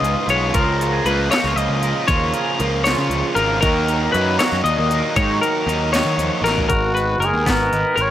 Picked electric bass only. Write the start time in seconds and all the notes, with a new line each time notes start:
0.01 C#2
0.27 B1
0.54 C#2
1.05 C#2
1.44 C#2
1.55 C#2
1.69 C#2
2.09 D#2
2.60 C#2
2.97 C#3
3.09 C#2
3.36 G#1
3.62 D#2
4.14 F#2
4.52 F#2
4.64 D#2
4.78 D#2
5.16 G#2
5.66 D#2
6.05 D#3
6.17 D#2
6.41 A1
6.70 G#1
7.18 F#1
7.33 D#2
7.46 G#1
7.72 G#1
7.97 G#1